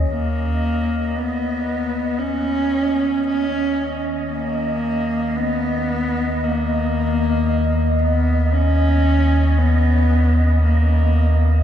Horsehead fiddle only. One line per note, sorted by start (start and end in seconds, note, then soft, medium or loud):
0.08 1.17 A#3 medium
1.16 2.19 B3 medium
2.18 3.24 C#4 medium
3.26 4.01 C#4 medium
4.32 5.38 A#3 medium
5.36 6.45 B3 medium
6.43 8.01 A#3 medium
7.99 8.54 B3 medium
8.52 9.59 C#4 medium
9.58 10.62 B3 medium
10.63 11.63 A#3 medium